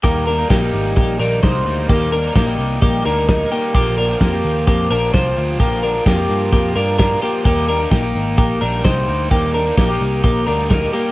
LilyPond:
<<
  \new Staff \with { instrumentName = "Clean electric guitar" } { \time 4/4 \key ees \major \tempo 4 = 129 <bes g'>8 <d' bes'>8 <bes g'>4 <bes g'>8 <d' bes'>8 <ees' c''>4 | <bes g'>8 <d' bes'>8 <bes g'>4 <bes g'>8 <d' bes'>8 <ees' bes'>8 <bes g'>8 | <bes g'>8 <d' bes'>8 <bes g'>4 <bes g'>8 <d' bes'>8 <f' c''>4 | <bes g'>8 <d' bes'>8 <bes g'>4 <bes g'>8 <d' bes'>8 <d' bes'>8 <bes g'>8 |
<bes g'>8 <d' bes'>8 <bes g'>4 <bes g'>8 <d' bes'>8 <ees' c''>4 | <bes g'>8 <d' bes'>8 <bes g'>4 <bes g'>8 <d' bes'>8 <ees' bes'>8 <bes g'>8 | }
  \new Staff \with { instrumentName = "Overdriven electric guitar" } { \time 4/4 \key ees \major <ees g bes ees'>8. <g bes ees'>8 <g bes ees'>4~ <g bes ees'>16 <ees g bes ees'>8 <ees g bes ees'>8 <ees g bes ees'>8 | <ees g bes ees'>8. <g bes ees'>8 <g bes ees'>4~ <g bes ees'>16 <ees g bes ees'>8 <ees g bes ees'>8 <ees g bes ees'>8 | <bes, d f bes f' g'>8. <f bes f' g'>8 <f bes f' g'>4~ <f bes f' g'>16 <f bes f' g'>8 <f bes f' g'>8 <f bes f' g'>8 | <bes, d f bes f' g'>8. <f bes f' g'>8 <f bes f' g'>4~ <f bes f' g'>16 <f bes f' g'>8 <f bes f' g'>8 <f bes f' g'>8 |
<ees g bes ees' g'>8. <bes ees' g'>8 <bes ees' g'>4~ <bes ees' g'>16 <g bes ees' g'>8 <g bes ees' g'>8 <g bes ees' g'>8 | <ees g bes ees' g'>8. <bes ees' g'>8 <bes ees' g'>4~ <bes ees' g'>16 <g bes ees' g'>8 <g bes ees' g'>8 <g bes ees' g'>8 | }
  \new Staff \with { instrumentName = "Picked electric bass" } { \clef bass \time 4/4 \key ees \major ees,4 bes,,8 aes,,8 bes,,8 bes,,8 c,8 d,8 | ees,4 bes,,8 c,8 bes,,8 d,4 r8 | bes,,4 f,8 ees,8 f,8 bes,,8 c,8 d,8 | bes,,4 f,8 g,8 f,8 g,4 r8 |
ees,4 bes,,8 aes,,8 bes,,8 bes,,8 c,8 d,8 | ees,4 bes,,8 c,8 bes,,8 d,4 r8 | }
  \new DrumStaff \with { instrumentName = "Drums" } \drummode { \time 4/4 <hh bd>8 hho8 <hh bd sn>8 hho8 <hh bd>8 hho8 <hh bd sn>8 hho8 | <hh bd>8 hho8 <hh bd sn>8 hho8 <hh bd>8 hho8 <hh bd sn>8 hho8 | <hh bd>8 hho8 <hh bd sn>8 hho8 <hh bd>8 hho8 <hh bd sn>8 hho8 | <hh bd>8 hho8 <hh bd sn>8 hho8 <hh bd>8 hho8 <hh bd sn>8 hho8 |
<hh bd>8 hho8 <hh bd sn>8 hho8 <hh bd>8 hho8 <hh bd sn>8 hho8 | <hh bd>8 hho8 <hh bd sn>8 hho8 <hh bd>8 hho8 <hh bd sn>8 hho8 | }
>>